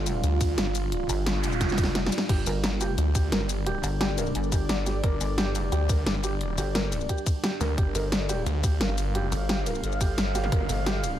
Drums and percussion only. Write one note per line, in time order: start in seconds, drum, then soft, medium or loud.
0.06 closed hi-hat medium
0.06 ride medium
0.06 shaker medium
0.24 closed hi-hat medium
0.24 shaker soft
0.41 kick loud
0.41 closed hi-hat medium
0.41 ride medium
0.41 shaker medium
0.58 snare loud
0.58 closed hi-hat medium
0.66 snare soft
0.75 closed hi-hat medium
0.75 ride medium
0.75 shaker medium
0.92 closed hi-hat medium
1.09 closed hi-hat medium
1.09 ride medium
1.09 shaker medium
1.26 snare loud
1.26 closed hi-hat medium
1.44 closed hi-hat medium
1.44 ride medium
1.44 shaker medium
1.52 shaker soft
1.61 kick medium
1.61 snare medium
1.61 closed hi-hat medium
1.61 shaker soft
1.69 snare medium
1.69 shaker soft
1.78 kick loud
1.78 closed hi-hat medium
1.78 ride medium
1.78 shaker medium
1.84 snare medium
1.95 snare medium
1.95 closed hi-hat medium
2.06 snare loud
2.12 closed hi-hat medium
2.12 ride medium
2.12 shaker medium
2.18 snare loud
2.29 kick loud
2.29 closed hi-hat medium
2.29 crash medium
2.47 closed hi-hat medium
2.47 ride medium
2.47 shaker medium
2.64 snare loud
2.64 closed hi-hat loud
2.81 closed hi-hat medium
2.81 ride medium
2.81 shaker medium
2.98 closed hi-hat loud
2.98 shaker soft
3.15 kick loud
3.15 closed hi-hat medium
3.15 ride medium
3.15 shaker medium
3.32 snare loud
3.32 closed hi-hat loud
3.41 snare soft
3.49 closed hi-hat medium
3.49 ride medium
3.49 shaker medium
3.66 closed hi-hat loud
3.84 closed hi-hat medium
3.84 ride medium
3.84 shaker medium
4.01 snare loud
4.01 closed hi-hat loud
4.18 closed hi-hat medium
4.18 ride medium
4.18 shaker medium
4.26 shaker soft
4.35 closed hi-hat loud
4.35 shaker soft
4.44 shaker soft
4.52 kick loud
4.52 closed hi-hat medium
4.52 ride medium
4.52 shaker medium
4.69 snare loud
4.69 closed hi-hat medium
4.86 snare soft
4.86 closed hi-hat medium
4.86 ride medium
4.86 shaker medium
5.04 kick loud
5.04 closed hi-hat loud
5.21 closed hi-hat medium
5.21 ride medium
5.21 shaker medium
5.38 snare loud
5.38 closed hi-hat medium
5.55 closed hi-hat medium
5.55 ride medium
5.55 shaker medium
5.72 closed hi-hat medium
5.72 shaker soft
5.89 kick loud
5.89 closed hi-hat medium
5.89 ride medium
5.89 shaker medium
6.06 snare loud
6.06 closed hi-hat loud
6.15 snare soft
6.24 closed hi-hat medium
6.24 ride medium
6.24 shaker medium
6.41 closed hi-hat medium
6.58 closed hi-hat medium
6.58 ride medium
6.58 shaker medium
6.75 snare loud
6.75 closed hi-hat medium
6.92 closed hi-hat medium
6.92 ride medium
6.92 shaker medium
7.01 shaker soft
7.09 kick medium
7.09 closed hi-hat loud
7.09 shaker soft
7.18 shaker soft
7.26 kick loud
7.26 closed hi-hat medium
7.26 ride medium
7.26 shaker medium
7.44 snare loud
7.44 closed hi-hat medium
7.61 snare soft
7.61 closed hi-hat medium
7.61 ride medium
7.61 shaker medium
7.78 kick loud
7.78 closed hi-hat medium
7.95 closed hi-hat medium
7.95 ride medium
7.95 shaker medium
8.12 snare loud
8.12 closed hi-hat medium
8.29 closed hi-hat medium
8.29 ride medium
8.29 shaker medium
8.46 closed hi-hat medium
8.46 shaker soft
8.64 kick loud
8.64 closed hi-hat medium
8.64 ride medium
8.64 shaker medium
8.81 snare loud
8.81 closed hi-hat medium
8.89 snare soft
8.98 closed hi-hat medium
8.98 ride medium
8.98 shaker medium
9.15 closed hi-hat medium
9.32 closed hi-hat medium
9.32 ride medium
9.32 shaker medium
9.49 snare loud
9.49 closed hi-hat medium
9.66 closed hi-hat medium
9.66 ride medium
9.66 shaker medium
9.75 shaker soft
9.84 closed hi-hat medium
9.84 shaker soft
9.92 shaker soft
10.01 kick loud
10.01 closed hi-hat medium
10.01 ride medium
10.01 shaker medium
10.18 snare loud
10.18 closed hi-hat medium
10.35 snare soft
10.35 closed hi-hat medium
10.35 ride medium
10.35 shaker medium
10.52 kick loud
10.52 closed hi-hat medium
10.69 closed hi-hat medium
10.69 ride medium
10.69 shaker medium
10.86 snare loud
10.86 closed hi-hat medium
11.04 closed hi-hat medium
11.04 ride medium
11.04 shaker medium